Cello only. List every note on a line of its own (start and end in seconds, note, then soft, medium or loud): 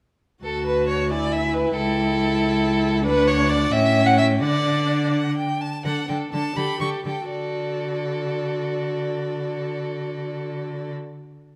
0.44 1.72 D2 soft
1.76 3.07 C#2 medium
3.05 3.72 D2 medium
3.72 4.43 A2 medium
4.42 5.63 D3 medium
5.85 5.93 D3 medium
6.09 6.17 D3 soft
6.33 6.41 D3 soft
6.57 6.65 D3 medium
6.80 6.88 D3 soft
7.05 7.13 D3 soft
7.30 10.92 D3 soft